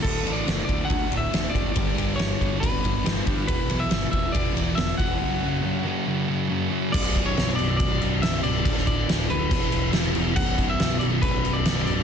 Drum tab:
CC |x---------------|----------------|----------------|----------------|
RD |--x-x-x-x-x-x-x-|x-x-x-x-x-x-x-x-|x-x-x-x-x-x-x-x-|----------------|
SD |----o-------o---|----o-------o---|----o-------o---|----------------|
BD |o-----o-o-----o-|o-----o-o-o---o-|o-----o-o-----o-|----------------|

CC |x-x-x-x-x-x-x-x-|x-x-x-x-x-x-x-x-|x-x-x-x-x-x-x-x-|
RD |----------------|----------------|----------------|
SD |----oo------o---|-o--oo------o---|----o-------o---|
BD |o-o-----o-------|o-o-----o-------|o-o-----o-------|